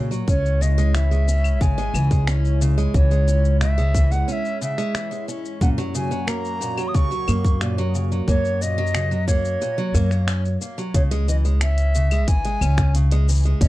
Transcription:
Already playing: A#2 A#3 F#4 C#5
0.11 F#3, shaker
0.28 C#2 G#3 C#4 E4 C#5, kick, shaker
0.46 shaker
0.61 C#3 D#5, shaker
0.78 G#3, shaker
0.94 E3 E5, finger snap, shaker
1.11 G#3, shaker
1.28 C#4, shaker
1.44 claves, shaker
1.61 G#1 C#3 G#5, kick, shaker
1.78 G#3, shaker
1.94 C#2 E3, claves, shaker
2.11 G#3, kick, shaker
2.27 C#4, finger snap, shaker
2.45 shaker
2.61 C#3, shaker
2.78 G#3, shaker
2.94 C#2 E3 C#5, kick, shaker
3.11 G#3, shaker
3.28 C#4, shaker
3.45 shaker
3.61 C#3 E5, finger snap, shaker
3.78 G#3, shaker
3.95 E3, kick, shaker
4.11 G#3 F#5, shaker
4.28 C#4 F#5, shaker
4.32 E5
4.45 shaker
4.61 C#3 E5, shaker
4.78 G#3, finger snap, shaker
4.94 E3, finger snap, shaker
5.11 G#3, shaker
5.28 C#4, shaker
5.45 shaker
5.61 F#2 A#2 A#3 F#4 C#5 F#5, kick, shaker
5.78 F#3, shaker
5.95 C#3 G#5, shaker
6.11 F#3, shaker
6.27 A#3 A#5, finger snap, shaker
6.45 shaker
6.61 A#2, shaker
6.77 F#3, claves, shaker
6.88 D#6
6.94 C#2 C#3 C#6, kick, shaker
7.11 F#3, shaker
7.28 F#2 A#3, claves, shaker
7.45 kick, shaker
7.61 A#2, finger snap, shaker
7.78 F#3, shaker
7.95 C#3, shaker
8.12 F#3, shaker
8.28 F#2 A#3 C#5, kick, shaker
8.45 shaker
8.61 A#2 D#5, shaker
8.78 F#3
8.87 shaker
8.94 C#3, finger snap, shaker
9.11 F#3, shaker
9.28 A#3 C#5, kick, shaker
9.45 shaker
9.62 A#2, shaker
9.78 F#3, shaker
9.94 F#2 A#3, kick, shaker
10.11 A#3, finger snap, shaker
10.28 C#4, finger snap, shaker
10.45 shaker
10.61 A#3, shaker
10.78 F#3, shaker
10.94 C#2 C#3 C#5, kick, closed hi-hat, shaker
11.11 G#3, closed hi-hat, shaker
11.28 E3 D#5, shaker
11.45 G#3, shaker
11.61 C#4 E5, finger snap, closed hi-hat, shaker
11.78 closed hi-hat, shaker
11.95 C#3, shaker
12.11 G#3, closed hi-hat, claves, shaker
12.28 G#1 E3 G#5, kick, closed hi-hat, shaker
12.45 G#3, closed hi-hat, shaker
12.61 C#2 C#4, claves, shaker
12.78 finger snap, kick, closed hi-hat, shaker
12.95 C#3, closed hi-hat, shaker
13.11 G#3, closed hi-hat, shaker
13.29 E3, shaker
13.31 shaker
13.34 shaker
13.37 shaker
13.40 shaker
13.43 G#3, shaker
13.45 shaker
13.61 C#2 C#4 D#5, kick, closed hi-hat, shaker

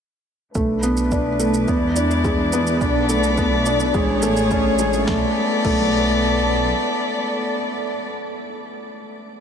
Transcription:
0.54 B1 A3 D4 B4, kick, shaker
0.83 B3, shaker
0.97 shaker
1.11 D4, kick, shaker
1.40 A3, shaker
1.54 shaker
1.68 E2 G#3 B3 E4 D5, kick, shaker
1.96 D4, shaker
2.11 shaker
2.24 G#3, kick, shaker
2.53 B3, shaker
2.67 shaker
2.80 B1 B3 D4 A4 D5, kick, shaker
3.09 A3, shaker
3.23 shaker
3.38 B3, kick, shaker
3.66 D4, shaker
3.80 shaker
3.93 A1 G#3 G#4 C#5, kick, shaker
4.22 A3, shaker
4.37 shaker
4.51 C#4, kick, shaker
4.79 G#3, shaker
4.93 shaker
5.07 B1 A3 B3 A4 D5, kick, snare
5.65 B1 A3, kick, crash

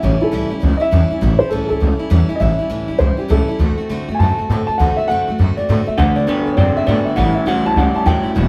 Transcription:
0.02 A1 A2 E3 G3 C#4 E4 C#5
0.20 G3 C#4 E4 A4, muted upright bass stroke
0.32 C#2 A2 E3 G3 C#4 E4
0.50 C#2 G3 C#4 E4
0.60 C#2 E3 G3 C#4 E4
0.77 E4 D#5
0.81 G3 C#4 E5, muted upright bass stroke
0.91 E2 A2 E3 G3 C#4 E4
1.11 G3 C#4 E4, muted upright bass stroke
1.21 A1 A2 E3 G3 C#4 E4
1.39 C#4 E4 C5, muted upright bass stroke
1.43 G3
1.50 C#2 A2 E3 G3 C#4 E4 A4
1.64 G#4
1.69 C#2 G3 C#4 E4 A4
1.80 C#2 E3 G3 C#4 E4
1.99 G3 C#4 E4, muted upright bass stroke
2.10 E2 A2 E3 G3 C#4 E4
2.29 G3 C#4 E4, muted upright bass stroke
2.35 D#5
2.40 A1 A2 E3 G3 C#4 E4 E5
2.58 G3 C#4 E4, muted upright bass stroke
2.70 C#2 A2 E3 G3 C#4 E4
2.88 C#2 G3 C#4 E4
2.98 C#2 E3 G3 C#4 E4 C5
3.17 G3 C#4 E4 G4, muted upright bass stroke
3.28 C#2 A2 E3 G3 C#4 E4 A4
3.48 G3 C#4 E4, muted upright bass stroke
3.59 D2 D3 A3 C4 F#4
3.78 A3 C4 F#4
3.89 F#2 D3 A3 C4 F#4
4.08 F#2 A3 C4 F#4
4.15 G#5
4.19 F#2 D3 A3 C4 F#4 A5
4.38 A3 C4 F#4, muted upright bass stroke
4.49 A2 D3 A3 C4 F#4
4.67 C4 F#4 A5, muted upright bass stroke
4.71 A3
4.78 D2 D3 A3 C4 F#4 F#5
4.96 C4 F#4 E5, muted upright bass stroke
5.01 A3
5.08 F#2 D3 A3 C4 F#4 F#5
5.28 F#2 A3 C4 F#4
5.39 F#2 D3 A3 C4 F#4
5.57 A3 C4 F#4 D5, muted upright bass stroke
5.69 A2 D3 A3 C4 F#4
5.86 A3 C4 F#4 E5, muted upright bass stroke
5.98 D2 D3 A3 C4 F#4 F#5
6.16 A3 C4 F#4 D5, muted upright bass stroke
6.27 F#2 D3 A3 B3 C4 F#4
6.46 F#2 A3 C4 F#4
6.52 C#5
6.57 F#2 D3 A3 C4 F#4 D5
6.77 A3 C4 F#4 E5, muted upright bass stroke
6.87 A2 D3 A3 B3 C4 F#4 D5
7.05 C4 F#4 E5, muted upright bass stroke
7.09 A3
7.16 A1 A2 E3 G3 C#4 E4 F#5
7.34 G3 C#4 E4 E5, muted upright bass stroke
7.46 C#2 A2 E3 F#3 G3 C#4 E4 F#5
7.65 C#2 G3 C#4 E4 A5
7.76 C#2 A2 E3 G3 C#4 E4 F#5
7.94 G3 C#4 E4 A5, muted upright bass stroke
8.06 D#2 A2 E3 F#3 G3 C#4 E4 G5
8.23 G3 C#4 E4, muted upright bass stroke
8.35 E1 E2 B2 E3 G#3 D4 E4

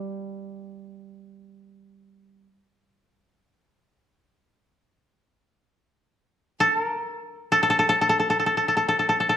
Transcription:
Already playing: G3 G5
6.60 A4
6.80 A#4
7.52 A4
7.63 A4
7.70 A4
7.79 A4
7.89 A4
8.01 A4
8.09 A4
8.20 A4
8.30 A4
8.40 A4
8.46 A4
8.57 A4
8.68 A4
8.77 A4
8.88 A4
8.99 A4
9.09 A4
9.20 A4
9.29 A4

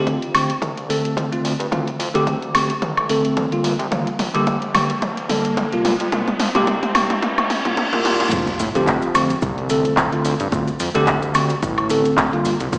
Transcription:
Already playing: F2 D3 A3 C4 G4, riser
0.07 kick, closed hi-hat, mid tom
0.22 closed hi-hat
0.34 D3 A3 C4 G4, open hi-hat, high woodblock
0.50 closed hi-hat
0.62 C2, kick, closed hi-hat, mid tom
0.77 closed hi-hat
0.89 D3 A3 C4 A4, open hi-hat
1.04 F2, closed hi-hat
1.17 F2, kick, closed hi-hat, mid tom
1.32 D3 A3 C4 F4, closed hi-hat
1.44 D2, open hi-hat
1.60 G2, closed hi-hat
1.71 D2 D3 A3 C4 F4, kick, closed hi-hat, mid tom
1.87 closed hi-hat
2.00 F2, open hi-hat
2.14 D2 D3 A3 C4 G4, closed hi-hat
2.27 kick, closed hi-hat, mid tom
2.42 closed hi-hat
2.54 D3 A3 C4 G4, open hi-hat, high woodblock
2.70 closed hi-hat
2.82 A1, kick, closed hi-hat, mid tom
2.97 closed hi-hat, high woodblock
3.09 D3 A3 C4 A4, open hi-hat
3.25 D2, closed hi-hat
3.37 D2, kick, closed hi-hat, mid tom
3.52 D3 G3 A#3 F4, closed hi-hat
3.64 G1, open hi-hat
3.79 C2, closed hi-hat
3.91 G1 D3 G3 A#3 F4, kick, closed hi-hat, mid tom
4.07 closed hi-hat
4.19 A#1, kick, open hi-hat, mid tom
4.34 G1 D3 G3 A#3 G4, closed hi-hat
4.47 kick, closed hi-hat, mid tom
4.62 closed hi-hat
4.74 D3 G3 A#3 G4, open hi-hat, mid tom, high woodblock
4.90 closed hi-hat
5.02 D1, kick, closed hi-hat, mid tom
5.17 closed hi-hat
5.29 D3 G3 A#3 A4, open hi-hat, mid tom
5.45 G1, closed hi-hat
5.57 G1, kick, closed hi-hat, mid tom
5.72 C3 G3 A#3 F4, closed hi-hat
5.85 C2, open hi-hat, mid tom
6.00 F2, closed hi-hat
6.12 C2 C3 G3 A#3 F4, kick, closed hi-hat, mid tom
6.28 closed hi-hat, mid tom
6.40 F2, open hi-hat, mid tom
6.55 C2 C3 G3 A#3 G4, closed hi-hat, mid tom
6.67 kick, closed hi-hat, mid tom
6.83 closed hi-hat, mid tom
6.95 C3 G3 A#3 G4, open hi-hat, mid tom, high woodblock
7.10 closed hi-hat, mid tom
7.22 G1, kick, closed hi-hat, mid tom, reverse cymbal
7.38 closed hi-hat, mid tom, high woodblock
7.50 kick, open hi-hat, mid tom
7.65 C2 C3 G3 A#3 F4, closed hi-hat, mid tom
7.77 C2, kick, closed hi-hat, mid tom
7.92 C3 G3 A#3 F4, closed hi-hat, mid tom
8.04 A#1 C3 G3 A#3 F4, open hi-hat, mid tom
8.20 F2, closed hi-hat, mid tom
8.32 F2 D3 A3 C4 F4, kick, closed hi-hat, crash, sub drop, maracas
8.47 closed hi-hat, maracas
8.59 A2, kick, open hi-hat, maracas
8.75 F2 D3 A3 C4 G4, closed hi-hat, maracas
8.87 kick, clap, closed hi-hat, maracas
9.02 closed hi-hat, maracas
9.15 D3 A3 C4 G4, open hi-hat, high woodblock, maracas
9.30 closed hi-hat, maracas
9.42 C2, kick, closed hi-hat, maracas
9.58 closed hi-hat
9.69 D3 A3 C4 A4, open hi-hat, maracas
9.85 F2, closed hi-hat, maracas
9.97 F2, kick, clap, closed hi-hat, maracas
10.12 D3 A3 C4 F4, closed hi-hat
10.25 D2, open hi-hat, maracas
10.40 G2, closed hi-hat, maracas
10.52 D2 D3 A3 C4 F4, kick, closed hi-hat, maracas
10.68 closed hi-hat, maracas
10.80 F2, open hi-hat, maracas
10.95 D2 D3 A3 C4 G4, closed hi-hat, maracas
11.07 kick, clap, closed hi-hat, maracas
11.22 closed hi-hat, maracas
11.34 D3 A3 C4 G4, open hi-hat, high woodblock, maracas
11.49 closed hi-hat, maracas
11.63 A1, kick, closed hi-hat, maracas
11.78 closed hi-hat, high woodblock
11.90 D3 A3 C4 A4, open hi-hat, maracas
12.05 D2, closed hi-hat, maracas
12.18 D2, kick, clap, closed hi-hat, maracas
12.32 D3 G3 A#3 F4, closed hi-hat
12.45 G1, open hi-hat, maracas
12.60 C2, closed hi-hat, maracas
12.72 G1 D3 G3 A#3 F4, kick, closed hi-hat, maracas

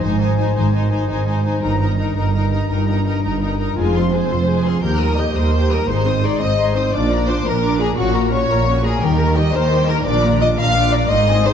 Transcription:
Already playing: G#2 D#4 C5
0.02 G#1 G#2 D#4 C5 D#5 G#5
0.21 D#4 C5 G#5
0.39 D#4 C5 G#5
0.56 G#1 G#2 D#3 D#4 C5 G#5
0.74 D#4 C5 G#5
0.92 D#4 C5 G#5
1.09 G#1 G#2 D#4 C5 D#5 G#5
1.27 D#4 C5 G#5
1.45 D#4 C5 G#5
1.63 G1 G2 D#4 A#4 A#5
1.81 D#4 A#4 A#5
1.98 D#4 A#4 D#5 A#5
2.16 G1 G2 D#4 A#4 A#5
2.35 D#4 A#4 D#5 A#5
2.52 D#4 A#4 A#5
2.70 G1 G2 D#4 A#4 A#5
2.88 G3 D#4 A#4 A#5
3.06 D#4 A#4 D#5 A#5
3.24 G1 G2 D#4 A#4 A#5
3.42 D#4 A#4 D#5 A#5
3.60 D#4 A#4 A#5
3.77 F1 F2 G#3 F4 G#4 G#5
3.96 C4 F4 C6
4.12 G#3 G#4 C5 G#5
4.30 F1 F2 C4 F4 C6
4.47 G#3 G#4 G#5
4.65 C4 F4 G#4 C6
4.82 D#2 D#3 A#3 G4 A#4 G6
5.00 G3 G4 A#4 D#6
5.18 A#3 G4 A#4 D#5 G6
5.35 D#2 G3 A#4 C5 D#5 D#6
5.53 A#3 G4 A#4 G6
5.71 G3 G4 A#4 D#6
5.88 G#1 G#2 D#4 G#4 C5 C6
6.06 C4 D#4 C5 D#6
6.23 D#4 G#4 D5 C6
6.41 G#1 G#2 C4 C5 D#5 D#6
6.59 D#4 G#4 C6
6.76 C4 D#4 C5 D#6
6.93 A#1 A#2 D4 F4 D5 D6
7.11 A#3 D4 A#5
7.28 D4 F4 C5 D6
7.46 A#1 A#2 A#3 D4 A#4 A#5
7.62 D4 F4 D6
7.80 A#3 D4 G#4 A#5
7.98 A#1 A#2 C#4 F#4 C#6
8.15 A#3 A#4 A#5
8.32 C#4 F#4 C#5 C#6
8.49 A#1 A#2 A#3 A#4 A#5
8.67 C#4 F#4 C#6
8.84 A#3 G#4 A#4 A#5
9.02 D#2 D#3 G3 G4 A#4 G5
9.19 A#3 A#4 A#5
9.36 G3 G4 D#5 G5
9.53 D#2 D#3 A#3 A#4 C5 A#5
9.71 G3 G4 G5
9.88 A#3 A#4 A#5
10.06 A#1 A#2 D4 F4 D5 D6
10.24 A#3 D4 A#5
10.41 D4 F4 D#5 D6
10.58 A#1 A#2 A#3 D4 A#4 F5 A#5
10.77 D4 F4 D6
10.92 A#3 D4 D5 A#5
11.10 G#1 G#2 D#4 G#4 D#5 C6
11.28 C4 C5 G#5
11.44 D#4 G#4 C5 C6

